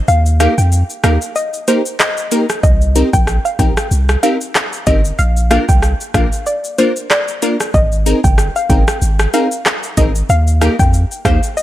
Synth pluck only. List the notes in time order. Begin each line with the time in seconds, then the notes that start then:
0.08 F5
0.40 F5
0.58 G5
1.04 F5
1.36 D#5
1.68 C5
1.99 D#5
2.63 D#5
3.13 G5
3.45 F5
3.59 G5
4.23 F5
4.87 D#5
5.19 F5
5.51 F5
5.69 G5
6.15 F5
6.47 D5
6.78 C5
7.11 D5
7.74 D#5
8.24 G5
8.56 F5
8.70 G5
9.34 F5
9.97 D#5
10.30 F5
10.61 F5
10.79 G5
11.25 F5
11.57 D#5